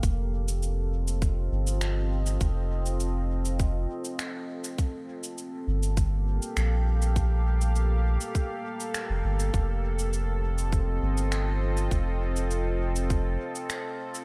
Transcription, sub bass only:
\new Staff \with { instrumentName = "Sub bass" } { \clef bass \time 4/4 \key f \mixolydian \tempo 4 = 101 f,,2~ f,,8 g,,4. | f,,2~ f,,8 r4. | r4. g,,4~ g,,16 r16 bes,,4~ | bes,,4.~ bes,,16 r4. f,,16 g,,8 |
f,,2~ f,,8 g,,4. | f,,2~ f,,8 r4. | }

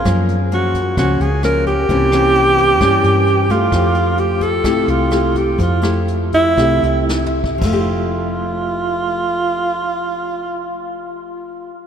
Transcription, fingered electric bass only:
\new Staff \with { instrumentName = "Fingered electric bass" } { \clef bass \time 4/4 \key f \major \tempo 4 = 125 ges,2 des,8 des,4. | c,2 g,8 g,4. | f,2 c,8 c,4. | f,2 c,8 c,4. |
f,,1~ | f,,1 | }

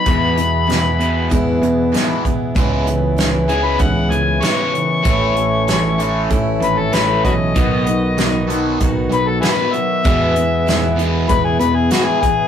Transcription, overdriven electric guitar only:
\new Staff \with { instrumentName = "Overdriven electric guitar" } { \clef bass \time 4/4 \key e \major \tempo 4 = 96 <e, b, e>8 <e, b,>8 <e, b,>8 <e, b, e>8 <e, b,>8 <e, b,>8 <e, b, e>8 <e, b,>8 | <cis e gis>8 <cis e>8 <cis e>8 <cis e gis>8 <cis e>8 <cis e>8 <cis e gis>8 <cis e>8 | <a, e a>8 <a, e>8 <a, e>8 <a, e a>8 <a, e>8 <a, e>8 <a, e a>8 <a, e>8 | <b, fis b>8 <b, fis>8 <b, fis>8 <b, fis b>8 <b, fis>8 <b, fis>8 <b, fis b>8 <b, fis>8 |
<e, b, e>8 <e, b,>8 <e, b,>8 <e, b, e>8 <e, b,>8 <e, b,>8 <e, b, e>8 <e, b,>8 | }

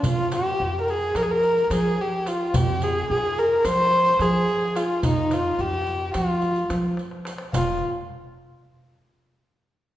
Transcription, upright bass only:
\new Staff \with { instrumentName = "Upright bass" } { \clef bass \time 9/8 \tempo 4. = 72 f,4 f,4 f4 f8 r4 | f,4 f,4 f4 f8 r4 | f,4 f,4 f4 f8 r4 | f,,8 r1 | }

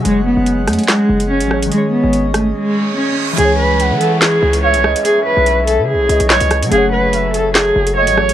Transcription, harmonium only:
<<
  \new Staff \with { instrumentName = "Harmonium" } { \time 4/4 \key cis \minor \tempo 4 = 144 << { fis''1 | dis''1 | gis'1~ | gis'1~ |
gis'1 | } \\ { gis'1~ | gis'1 | cis'1~ | cis'1 |
a1 | } >> }
  \new Staff \with { instrumentName = "Harmonium" } { \clef bass \time 4/4 \key cis \minor gis1 | cis'1 | e1~ | e1 |
fis1 | }
>>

